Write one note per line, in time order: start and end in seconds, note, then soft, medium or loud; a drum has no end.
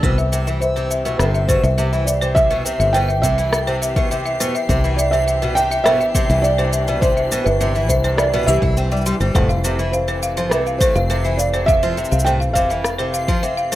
0.02 1.21 C2 loud
0.02 0.17 B2 medium
0.02 13.75 E3 medium
0.02 9.31 G4 medium
0.02 0.11 C5 loud
0.02 13.75 C7 medium
0.02 kick loud
0.02 cabasa soft
0.18 0.31 E5 loud
0.18 cabasa soft
0.32 0.45 C3 medium
0.32 0.46 E5 medium
0.32 cabasa medium
0.47 0.61 E3 medium
0.47 0.60 E5 medium
0.47 cabasa soft
0.60 1.15 C5 medium
0.60 0.75 E5 medium
0.60 cabasa soft
0.76 1.04 C3 medium
0.76 0.84 C5 medium
0.76 cabasa soft
0.91 1.04 E5 loud
0.91 cabasa medium
1.05 1.18 B2 medium
1.05 1.19 E5 medium
1.05 cabasa soft
1.18 1.55 G1 loud
1.18 1.47 C3 medium
1.18 1.25 B4 medium
1.18 1.33 E5 medium
1.18 cross-stick medium
1.18 cabasa soft
1.34 1.48 E5 medium
1.34 cabasa soft
1.47 1.63 B2 medium
1.47 2.08 C5 medium
1.47 1.57 C5 medium
1.47 kick loud
1.47 cabasa medium
1.63 2.72 C2 loud
1.63 1.77 E5 loud
1.63 cabasa soft
1.78 1.91 C3 loud
1.78 1.92 E5 medium
1.78 cabasa soft
1.93 2.06 E3 medium
1.93 2.06 E5 medium
1.93 cabasa soft
2.06 2.36 D5 medium
2.06 2.21 E5 medium
2.06 cabasa medium
2.21 2.49 C3 medium
2.21 2.30 C5 loud
2.21 cabasa soft
2.35 2.95 E5 loud
2.35 2.49 E5 loud
2.35 kick loud
2.35 cabasa soft
2.50 2.64 B2 medium
2.50 2.64 E5 medium
2.50 cabasa soft
2.65 2.93 C3 medium
2.65 2.79 E5 medium
2.65 cabasa medium
2.80 3.23 G1 medium
2.80 2.94 E5 loud
2.80 cabasa soft
2.93 3.08 B2 loud
2.93 3.03 C5 medium
2.93 3.24 G5 loud
2.93 cabasa soft
3.09 3.22 E5 medium
3.09 cabasa soft
3.22 4.40 C2 medium
3.22 3.36 C3 loud
3.22 4.35 E5 loud
3.22 3.37 E5 medium
3.22 kick medium
3.22 cabasa medium
3.38 3.52 E3 medium
3.38 3.52 E5 medium
3.38 cabasa soft
3.53 3.67 E5 loud
3.53 cross-stick medium
3.53 cabasa soft
3.67 3.95 C3 medium
3.67 3.75 C5 loud
3.67 cabasa soft
3.82 3.95 E5 loud
3.82 cabasa medium
3.96 4.09 B2 medium
3.96 4.10 E5 medium
3.96 kick loud
3.96 cabasa soft
4.11 4.39 C3 medium
4.11 4.24 E5 medium
4.11 cabasa soft
4.25 4.39 E5 loud
4.25 cabasa soft
4.40 4.50 E2 loud
4.40 4.54 B2 loud
4.40 4.48 C5 medium
4.40 cabasa medium
4.55 4.69 E5 loud
4.55 cabasa soft
4.69 5.86 C2 loud
4.69 4.82 C3 loud
4.69 9.31 D4 medium
4.69 4.83 E5 medium
4.69 kick loud
4.69 cabasa soft
4.84 4.98 E3 medium
4.84 4.98 E5 medium
4.84 cabasa soft
4.96 5.11 D5 medium
4.96 5.12 E5 loud
4.96 cabasa medium
5.11 5.40 C3 medium
5.11 5.21 C5 medium
5.11 5.57 E5 loud
5.11 cabasa soft
5.28 5.41 E5 medium
5.28 cabasa soft
5.42 5.55 B2 medium
5.42 5.56 E5 medium
5.42 cabasa soft
5.55 5.84 C3 medium
5.55 5.70 E5 medium
5.55 5.86 G5 loud
5.55 cabasa medium
5.72 5.85 E5 loud
5.72 cabasa soft
5.84 6.22 G1 loud
5.84 5.99 B2 loud
5.84 5.94 C5 loud
5.84 6.45 E5 loud
5.84 cross-stick medium
5.84 cabasa soft
6.01 6.14 E5 loud
6.01 cabasa soft
6.15 6.28 C3 loud
6.15 6.29 E5 medium
6.15 kick loud
6.15 cabasa medium
6.29 7.38 C2 loud
6.29 6.43 E3 medium
6.29 6.43 E5 medium
6.29 cabasa soft
6.42 7.03 D5 loud
6.42 6.58 E5 loud
6.42 cabasa soft
6.58 6.86 C3 medium
6.58 6.67 C5 loud
6.58 cabasa soft
6.73 6.87 E5 loud
6.73 cabasa medium
6.88 7.01 B2 medium
6.88 7.01 E5 medium
6.88 cabasa soft
7.01 7.30 C3 medium
7.01 7.47 C5 loud
7.01 7.16 E5 medium
7.01 kick loud
7.01 cabasa soft
7.17 7.31 E5 medium
7.17 cabasa soft
7.32 7.45 B2 loud
7.32 7.40 C5 medium
7.32 cabasa medium
7.44 7.89 G1 medium
7.44 7.90 B4 medium
7.44 7.60 E5 loud
7.44 cabasa soft
7.61 7.74 C3 loud
7.61 7.74 E5 medium
7.61 cabasa soft
7.75 7.89 E3 medium
7.75 7.89 E5 medium
7.75 cabasa soft
7.88 8.47 C2 medium
7.88 8.19 C5 medium
7.88 8.04 E5 loud
7.88 kick medium
7.88 cabasa medium
8.04 8.32 C3 medium
8.04 8.12 C5 loud
8.04 cabasa soft
8.17 8.45 D5 medium
8.17 8.33 E5 medium
8.17 cross-stick medium
8.17 cabasa soft
8.33 8.46 B2 loud
8.33 8.47 E5 medium
8.33 cabasa soft
8.43 9.01 E5 medium
8.43 cabasa soft
8.47 8.57 C2 medium
8.47 8.61 E3 medium
8.47 8.62 G4 loud
8.47 cabasa medium
8.62 9.13 C2 medium
8.62 8.75 E4 medium
8.62 8.76 E5 medium
8.62 kick loud
8.77 8.91 C4 medium
8.77 8.91 G5 medium
8.77 cabasa soft
8.91 9.05 G3 medium
8.91 9.05 D5 medium
8.91 cabasa soft
8.97 cabasa soft
9.01 cabasa soft
9.06 9.14 G3 loud
9.06 9.20 C6 medium
9.06 cabasa medium
9.20 9.30 G1 medium
9.20 9.34 G3 medium
9.20 9.34 C5 medium
9.20 cabasa soft
9.35 10.52 F1 loud
9.35 9.49 A2 loud
9.35 13.75 A3 medium
9.35 13.75 C4 medium
9.35 9.43 C5 loud
9.35 kick loud
9.35 cabasa soft
9.49 9.63 F5 medium
9.49 cabasa soft
9.64 9.77 C3 loud
9.64 9.78 C5 medium
9.64 cabasa medium
9.79 9.93 E3 medium
9.79 9.93 E5 medium
9.79 cabasa soft
9.92 10.53 C5 medium
9.92 10.07 F5 medium
9.92 cabasa soft
10.08 10.35 C3 medium
10.08 10.16 C5 loud
10.08 cabasa soft
10.23 10.36 F5 loud
10.23 cabasa medium
10.37 10.50 F3 loud
10.37 10.51 C5 medium
10.37 cabasa soft
10.50 10.88 C2 loud
10.50 10.79 C3 medium
10.50 10.81 B4 medium
10.50 10.66 E5 medium
10.50 cross-stick medium
10.50 cabasa soft
10.67 10.80 F5 medium
10.67 cabasa soft
10.78 10.94 A2 loud
10.78 11.39 C5 medium
10.78 10.89 C5 loud
10.78 kick loud
10.78 cabasa medium
10.95 12.04 F1 loud
10.95 11.09 F5 loud
10.95 cabasa soft
11.10 11.23 C3 loud
11.10 11.24 C5 medium
11.10 cabasa soft
11.24 11.38 E3 medium
11.24 11.39 E5 medium
11.24 cabasa soft
11.37 11.68 D5 medium
11.37 11.53 F5 loud
11.37 cabasa medium
11.54 11.81 C3 medium
11.54 11.62 C5 medium
11.54 cabasa soft
11.66 12.27 E5 loud
11.66 11.82 F5 loud
11.66 kick loud
11.66 cabasa soft
11.83 11.96 F3 loud
11.83 11.97 C5 medium
11.83 cabasa soft
11.97 12.25 C3 medium
11.97 12.11 E5 medium
11.97 cabasa soft
12.05 cabasa soft
12.12 12.56 C2 medium
12.12 12.26 F5 medium
12.12 cabasa medium
12.19 cabasa medium
12.25 12.40 A2 loud
12.25 12.34 C5 loud
12.25 12.31 G5 loud
12.25 cabasa soft
12.40 12.54 F5 loud
12.40 cabasa soft
12.53 13.72 F1 loud
12.53 12.69 C3 loud
12.53 12.69 C5 medium
12.53 13.67 F5 loud
12.53 kick medium
12.53 cabasa medium
12.70 12.84 E3 medium
12.70 12.84 E5 medium
12.70 cabasa soft
12.84 12.98 F5 medium
12.84 cross-stick medium
12.84 cabasa soft
12.98 13.27 C3 medium
12.98 13.07 C5 loud
12.98 cabasa soft
13.14 13.28 F5 loud
13.14 cabasa medium
13.28 13.41 F3 loud
13.28 13.42 C5 medium
13.28 kick loud
13.28 cabasa soft
13.43 13.70 C3 medium
13.43 13.57 E5 medium
13.43 cabasa soft
13.57 13.71 F5 loud
13.57 cabasa soft
13.72 13.75 A1 loud
13.72 13.75 A2 loud
13.72 13.75 C5 loud